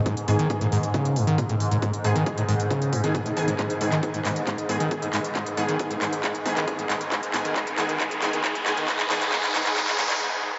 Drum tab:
HH |xxoxxxoxxxoxxxox|xxoxxxoxxxoxxxox|xxoxxxoxxxoxxxox|xxoxxxoxxxoxxxox|
CP |----------------|----------------|x--x--x-x-----x-|x-----x-x--x--x-|
T2 |----------------|----------------|--o---o----o--o-|--o---o----o--o-|
BD |o---o---o---o---|o---o---o-o-o---|o---o---o---o---|o---o---o-o-o---|

HH |xxoxxxoxxxoxxxox|xxoxxxoxxxox----|
CP |x-x-x-x-x-x-x-x-|xxxxxxxxxxxx----|
T2 |--o---o----o--o-|--o-------------|
BD |o---o---o---o---|o---o---o-o-----|